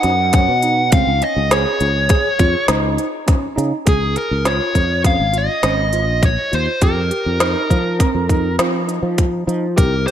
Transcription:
Already playing: D#4 F#5
0.03 F#2, snare, closed hi-hat
0.33 C#4 F#5, kick, snare, closed hi-hat
0.48 B2
0.62 D#4, closed hi-hat
0.92 C#2 C4 F5, kick, closed hi-hat
1.07 C#2
1.22 C#4 D#5, closed hi-hat
1.36 C#2
1.51 G#4 C#5, snare, closed hi-hat
1.80 C#2, closed hi-hat
2.09 G#4, kick, snare, closed hi-hat
2.39 F2 F4, kick, closed hi-hat
2.68 C#2 D#4, snare, closed hi-hat
2.98 closed hi-hat
3.27 C#4, kick, snare, closed hi-hat
3.56 C#3 D#4, closed hi-hat
3.86 C#2 G#4, kick, closed hi-hat
4.15 G#4 A#4, closed hi-hat
4.31 C#2
4.45 F4 C#5, snare, closed hi-hat
4.75 F2, kick, closed hi-hat
5.04 C#4 F5, kick, snare, closed hi-hat
5.19 G#1
5.33 F4, closed hi-hat
5.38 D#5
5.63 G#1 C#4, snare, closed hi-hat
5.93 F4, closed hi-hat
6.08 A#1
6.23 C#5, kick, closed hi-hat
6.52 D#2 F4 C5, closed hi-hat
6.81 F2 G4 A#4, kick, closed hi-hat
7.11 G4, closed hi-hat
7.26 F2
7.40 D#4, snare, closed hi-hat
7.70 F3, kick, closed hi-hat
7.99 C4, kick, snare, closed hi-hat
8.15 F2
8.29 D#4, kick, closed hi-hat
8.59 F3 C4, snare, closed hi-hat
8.88 D#4, closed hi-hat
9.03 F3
9.18 kick, closed hi-hat
9.47 F3 D#4, closed hi-hat
9.76 C2 G4 A#4, kick, closed hi-hat
10.07 G4 C5

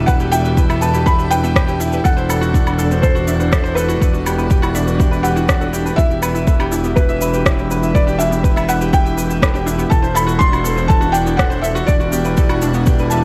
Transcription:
Already playing: E1 E4 G4 A4 B4 D5 E5 G5
0.06 B4 F#5, kick, shaker
0.20 E4 G4, shaker
0.32 E4 E5 G5, shaker
0.45 G4 B4, shaker
0.57 E4 B4, kick, shaker
0.69 E4 E5, low woodblock, shaker
0.81 B3 B4 A5, shaker
0.94 E4 G4, shaker
1.06 E4 A4 B5, kick, shaker
1.19 D4 G4, shaker
1.30 D4 B4 G5, shaker
1.43 B3 E5, shaker
1.55 B4, kick, cross-stick, shaker
1.67 E4 G4, shaker
1.80 E4 E5, shaker
1.92 G4 B4, shaker
2.04 E1 E4 A4 F#5, kick, shaker
2.17 E4 C5, shaker
2.29 B3 A4, low woodblock, shaker
2.41 E4 F#4, shaker
2.54 D4 A4, kick, shaker
2.67 D4 F#4, low woodblock, shaker
2.78 D4 A4, shaker
2.91 B3 C5 F#5, shaker
3.02 A4 B4 C5, kick, shaker
3.15 E4 F#4, shaker
3.27 D4 E5, shaker
3.40 F#4 B4, shaker
3.52 E4 A4, kick, cross-stick, shaker
3.64 E4 C5, shaker
3.75 B3 A4 B4, shaker
3.88 E4 F#4, shaker
4.01 E1 D4 A4, kick, shaker
4.13 D4 F#4, shaker
4.26 D4 G4, low woodblock, shaker
4.38 B3 B4, shaker
4.50 G4 B4, kick, shaker
4.62 E4 F#4, low woodblock, shaker
4.75 D4 E5, shaker
4.87 F#4 B4, shaker
4.99 E4 G4, kick, shaker
5.11 E4 B4, shaker
5.23 E4 G4 F#5, shaker
5.36 E4 F#4, shaker
5.48 D4 A4, kick, cross-stick, shaker
5.61 F#4 A4, shaker
5.73 E4 G4, shaker
5.85 D4 B4, shaker
5.96 E1 E4 E5, kick, shaker
6.10 E4 G4, shaker
6.22 B3 B4, low woodblock, shaker
6.35 E4 E5, shaker
6.47 A4 B4, kick, shaker
6.59 D4 G4, low woodblock, shaker
6.72 D4 E4, shaker
6.84 B3 G4 G5, shaker
6.96 B4, kick, shaker
7.09 E4 E5, shaker
7.21 B4 E5, shaker
7.34 G4 B4, shaker
7.46 E4, kick, cross-stick, shaker
7.58 E4 G4, shaker
7.70 B3 B4, shaker
7.83 E4 E5, shaker
7.94 A4 B4 D5, kick, shaker
8.07 D4 G4, shaker
8.19 D4 E4 E5, shaker
8.31 B3 G4, shaker
8.43 B4, kick, shaker
8.56 E4 E5, low woodblock, shaker
8.68 B4 E5 F#5, shaker
8.81 G4 B4, shaker
8.93 E4 G5, kick, shaker
9.05 E4 G4, shaker
9.17 B3 B4, shaker
9.30 E4 E5, shaker
9.42 A4 B4, kick, cross-stick, shaker
9.54 D4 G4, shaker
9.66 D4 E4, shaker
9.78 B3 G4, shaker
9.90 E1 A4 B4 A5, kick, shaker
10.02 E4 C5, shaker
10.15 A4 E5 B5, low woodblock, shaker
10.27 F#4 B4, shaker
10.39 D4 E4 C6, kick, shaker
10.52 E4 F#4, low woodblock, shaker
10.64 B3 A4, shaker
10.77 E4 C5 D5 F#5, shaker
10.88 A4 A5, kick, shaker
11.01 D4 F#4, shaker
11.12 D4 G5, shaker
11.25 B3 F#4, shaker
11.37 A4 B4 F#5, kick, cross-stick, shaker
11.50 E4 C5, shaker
11.61 A4 E5, shaker
11.75 F#4 B4, shaker
11.87 E1 D4 E4 D5, kick, shaker
12.00 E4 F#4, shaker
12.12 B3 G4, shaker
12.25 E4 B4, shaker
12.37 G4 A4, kick, shaker
12.49 D4 F#4, low woodblock, shaker
12.62 D4, shaker
12.74 B3 F#4, shaker
12.86 G4 B4, kick, shaker
12.99 E4 B4, shaker
13.10 D5 E5 A5, shaker

